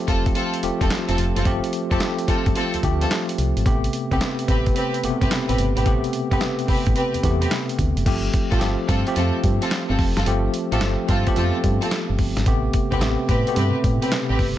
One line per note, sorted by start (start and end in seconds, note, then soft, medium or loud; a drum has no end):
0.00 0.63 F3 medium
0.00 0.63 A3 medium
0.00 0.64 C4 medium
0.00 0.64 G4 medium
0.08 0.31 F1 medium
0.08 0.25 C4 medium
0.08 0.25 F4 medium
0.08 0.25 A4 medium
0.08 kick medium
0.08 closed hi-hat medium
0.26 kick medium
0.26 closed hi-hat soft
0.35 0.52 C4 medium
0.35 0.53 F4 medium
0.35 0.53 A4 medium
0.35 closed hi-hat medium
0.54 closed hi-hat medium
0.63 0.70 E1 soft
0.63 1.34 F3 medium
0.63 1.34 A3 medium
0.63 1.34 C4 medium
0.63 1.35 G4 medium
0.63 closed hi-hat medium
0.81 0.89 E1 medium
0.81 0.90 C4 medium
0.81 0.90 F4 medium
0.81 0.90 A4 medium
0.81 kick medium
0.81 closed hi-hat medium
0.90 snare loud
0.90 clap medium
0.90 closed hi-hat medium
1.08 1.16 F1 medium
1.08 1.17 C4 medium
1.08 1.17 F4 medium
1.08 1.17 A4 medium
1.08 closed hi-hat medium
1.18 1.33 F1 medium
1.18 closed hi-hat medium
1.36 1.44 F#1 medium
1.36 1.45 C4 medium
1.36 1.45 F4 medium
1.36 1.45 A4 medium
1.36 closed hi-hat medium
1.45 1.60 G1 loud
1.45 1.81 F3 medium
1.45 1.81 A3 medium
1.45 1.81 C4 medium
1.45 1.82 G4 loud
1.45 kick loud
1.45 closed hi-hat medium
1.64 closed hi-hat medium
1.73 closed hi-hat medium
1.91 1.99 F1 loud
1.91 2.68 F3 medium
1.91 2.68 A3 medium
1.91 2.00 C4 medium
1.91 2.69 C4 medium
1.91 2.00 F4 medium
1.91 2.69 G4 loud
1.91 2.00 A4 medium
1.91 kick medium
1.91 closed hi-hat soft
2.00 snare loud
2.00 clap medium
2.00 closed hi-hat medium
2.18 closed hi-hat soft
2.28 2.35 G1 soft
2.28 2.45 C4 medium
2.28 2.45 F4 medium
2.28 2.45 A4 medium
2.28 kick medium
2.28 closed hi-hat medium
2.46 2.54 G1 loud
2.46 kick loud
2.46 closed hi-hat soft
2.55 2.73 C4 medium
2.55 2.73 F4 medium
2.55 2.73 A4 medium
2.55 closed hi-hat medium
2.74 2.78 D2 soft
2.74 closed hi-hat medium
2.83 3.06 D2 loud
2.83 3.54 F3 medium
2.83 3.54 A3 medium
2.83 3.55 C4 medium
2.83 3.55 G4 medium
2.83 kick medium
2.83 closed hi-hat medium
3.01 3.10 C4 medium
3.01 3.10 F4 medium
3.01 3.10 A4 medium
3.01 closed hi-hat medium
3.11 snare loud
3.11 clap medium
3.11 closed hi-hat medium
3.29 closed hi-hat medium
3.38 3.53 C2 medium
3.38 closed hi-hat medium
3.57 3.64 G#1 medium
3.57 closed hi-hat medium
3.66 3.88 A1 loud
3.66 4.01 C3 medium
3.66 4.01 A3 medium
3.66 4.02 B3 medium
3.66 4.02 G4 medium
3.66 kick loud
3.66 closed hi-hat medium
3.84 closed hi-hat soft
3.93 closed hi-hat medium
4.11 4.19 C2 medium
4.11 4.89 C3 medium
4.11 4.89 A3 medium
4.11 4.89 B3 medium
4.11 4.20 C4 medium
4.11 4.20 G4 medium
4.11 4.89 G4 loud
4.11 4.20 B4 medium
4.11 kick medium
4.11 closed hi-hat soft
4.21 snare loud
4.21 clap loud
4.21 closed hi-hat medium
4.39 closed hi-hat medium
4.48 4.71 A1 medium
4.48 4.65 C4 medium
4.48 4.65 G4 medium
4.48 4.66 B4 medium
4.48 kick loud
4.48 closed hi-hat medium
4.66 kick medium
4.66 closed hi-hat soft
4.75 4.93 C4 medium
4.75 4.93 G4 medium
4.75 4.93 B4 medium
4.75 closed hi-hat medium
4.94 closed hi-hat medium
5.03 5.11 G1 soft
5.03 5.12 B2 medium
5.03 5.75 A3 medium
5.03 5.75 B3 medium
5.03 5.75 G4 medium
5.03 closed hi-hat medium
5.10 5.78 C3 medium
5.21 5.29 G1 medium
5.21 5.30 C4 medium
5.21 5.30 G4 medium
5.21 5.30 B4 medium
5.21 kick medium
5.21 closed hi-hat medium
5.31 snare loud
5.31 clap medium
5.31 closed hi-hat medium
5.49 5.57 A1 loud
5.49 5.58 C4 medium
5.49 5.58 G4 medium
5.49 5.58 B4 medium
5.49 closed hi-hat medium
5.58 5.73 G1 medium
5.58 closed hi-hat medium
5.76 5.84 G#1 medium
5.76 5.85 C4 medium
5.76 5.85 G4 medium
5.76 5.85 B4 medium
5.76 closed hi-hat medium
5.86 6.01 A1 loud
5.86 6.21 C3 medium
5.86 6.22 A3 medium
5.86 6.22 B3 medium
5.86 6.22 G4 loud
5.86 kick loud
5.86 closed hi-hat medium
6.04 closed hi-hat soft
6.13 closed hi-hat medium
6.31 6.39 G1 medium
6.31 7.09 C3 medium
6.31 7.09 A3 medium
6.31 7.09 B3 medium
6.31 6.40 C4 medium
6.31 6.40 G4 medium
6.31 7.09 G4 medium
6.31 6.40 B4 medium
6.31 kick medium
6.31 closed hi-hat soft
6.41 snare loud
6.41 clap medium
6.41 closed hi-hat medium
6.59 closed hi-hat soft
6.68 6.76 A1 soft
6.68 6.85 C4 medium
6.68 6.86 G4 medium
6.68 6.86 B4 medium
6.68 kick medium
6.68 open hi-hat medium
6.86 6.94 A1 medium
6.86 kick medium
6.86 closed hi-hat soft
6.96 7.13 C4 medium
6.96 7.13 G4 medium
6.96 7.13 B4 medium
6.96 closed hi-hat medium
7.14 7.18 E2 soft
7.14 closed hi-hat medium
7.23 7.46 E2 medium
7.23 7.94 C3 medium
7.23 7.95 A3 medium
7.23 7.95 B3 medium
7.23 7.95 G4 medium
7.23 kick medium
7.23 closed hi-hat medium
7.41 7.50 C4 medium
7.41 7.50 G4 medium
7.41 7.51 B4 medium
7.41 closed hi-hat medium
7.51 snare loud
7.51 clap medium
7.51 closed hi-hat loud
7.69 closed hi-hat medium
7.79 7.94 D2 medium
7.79 kick medium
7.79 closed hi-hat medium
7.97 8.04 F#1 loud
7.97 closed hi-hat medium
8.06 8.29 G1 loud
8.06 8.42 F3 medium
8.06 8.42 A3 medium
8.06 8.42 C4 medium
8.06 8.42 G4 medium
8.06 kick loud
8.06 closed hi-hat medium
8.06 crash medium
8.34 kick loud
8.34 closed hi-hat medium
8.51 8.59 A1 loud
8.51 8.93 F3 medium
8.51 8.93 A3 medium
8.51 8.60 C4 medium
8.51 8.94 C4 medium
8.51 8.61 F4 medium
8.51 8.57 F4 medium
8.51 8.61 A4 medium
8.51 kick medium
8.51 closed hi-hat soft
8.60 8.76 G1 medium
8.60 8.97 G4 medium
8.60 snare loud
8.60 clap loud
8.60 closed hi-hat medium
8.88 9.04 G2 medium
8.88 9.06 C4 medium
8.88 9.06 F4 medium
8.88 9.06 A4 medium
8.88 kick loud
8.88 closed hi-hat medium
9.07 9.94 F3 medium
9.07 9.94 A3 medium
9.07 9.95 C4 medium
9.07 9.95 G4 loud
9.07 closed hi-hat soft
9.16 9.31 F2 medium
9.16 9.33 C4 medium
9.16 9.33 F4 medium
9.16 9.33 A4 medium
9.16 closed hi-hat medium
9.44 9.59 G2 loud
9.44 kick loud
9.44 closed hi-hat medium
9.62 9.71 C4 medium
9.62 9.71 F4 medium
9.62 9.71 A4 medium
9.62 closed hi-hat medium
9.71 snare loud
9.71 clap medium
9.71 closed hi-hat loud
9.89 9.97 G1 medium
9.89 9.98 C4 medium
9.89 9.98 F4 medium
9.89 9.98 A4 medium
9.99 10.14 F1 medium
9.99 kick medium
9.99 open hi-hat medium
10.16 10.25 F#1 medium
10.16 10.25 C4 medium
10.16 10.26 F4 medium
10.16 10.26 A4 medium
10.16 snare medium
10.16 closed hi-hat medium
10.26 10.49 G1 loud
10.26 10.62 F3 medium
10.26 10.62 A3 medium
10.26 10.62 C4 medium
10.26 10.63 G4 medium
10.26 closed hi-hat medium
10.54 closed hi-hat medium
10.72 10.80 A1 loud
10.72 11.14 F3 medium
10.72 11.14 A3 medium
10.72 10.81 C4 medium
10.72 11.14 C4 medium
10.72 10.81 F4 medium
10.72 11.14 G4 loud
10.72 10.81 A4 medium
10.72 closed hi-hat soft
10.81 10.96 G1 loud
10.81 snare loud
10.81 clap loud
10.81 closed hi-hat medium
11.09 11.24 G2 medium
11.09 11.26 C4 medium
11.09 11.26 F4 medium
11.09 11.26 A4 medium
11.09 kick loud
11.09 closed hi-hat medium
11.27 12.14 F3 medium
11.27 12.15 A3 medium
11.27 11.32 B3 medium
11.27 12.15 G4 loud
11.27 kick loud
11.27 closed hi-hat soft
11.34 11.51 F2 loud
11.34 12.18 C4 medium
11.34 11.53 C4 medium
11.34 11.53 F4 medium
11.34 11.54 A4 medium
11.34 closed hi-hat medium
11.64 11.79 G2 loud
11.64 kick medium
11.64 closed hi-hat medium
11.81 11.91 C4 medium
11.81 11.91 F4 medium
11.81 11.91 A4 medium
11.81 closed hi-hat medium
11.91 snare loud
11.91 clap medium
11.91 closed hi-hat medium
12.10 12.17 G1 loud
12.19 12.34 G1 medium
12.19 kick medium
12.19 open hi-hat medium
12.37 12.45 G#1 medium
12.37 snare medium
12.37 closed hi-hat medium
12.46 12.69 A1 medium
12.46 12.82 C3 medium
12.46 12.82 A3 medium
12.46 12.82 B3 medium
12.46 12.83 G4 medium
12.46 kick loud
12.46 closed hi-hat medium
12.73 kick loud
12.73 closed hi-hat medium
12.92 13.00 C2 loud
12.92 13.34 C3 medium
12.92 13.34 A3 medium
12.92 13.34 B3 medium
12.92 13.01 C4 medium
12.92 13.01 G4 medium
12.92 13.34 G4 loud
12.92 13.01 B4 medium
12.92 kick medium
12.92 closed hi-hat soft
13.01 13.16 A1 medium
13.01 snare loud
13.01 clap medium
13.01 closed hi-hat medium
13.29 13.44 A2 medium
13.29 13.46 C4 medium
13.29 13.46 G4 medium
13.29 13.46 B4 medium
13.29 kick medium
13.29 closed hi-hat medium
13.47 13.52 B2 medium
13.47 14.35 A3 medium
13.47 14.35 B3 medium
13.47 14.35 G4 medium
13.47 closed hi-hat soft
13.54 13.71 G2 medium
13.54 14.38 C3 medium
13.54 13.73 C4 medium
13.54 13.74 G4 medium
13.54 13.74 B4 medium
13.54 closed hi-hat medium
13.84 13.99 A2 medium
13.84 kick loud
13.84 closed hi-hat medium
14.02 14.11 C4 medium
14.02 14.11 G4 medium
14.02 14.11 B4 medium
14.02 closed hi-hat medium
14.12 snare loud
14.12 clap medium
14.12 closed hi-hat medium
14.29 14.37 A1 medium
14.29 14.38 C4 medium
14.29 14.39 G4 medium
14.29 14.39 B4 medium
14.39 14.54 G1 medium
14.39 kick medium
14.39 open hi-hat medium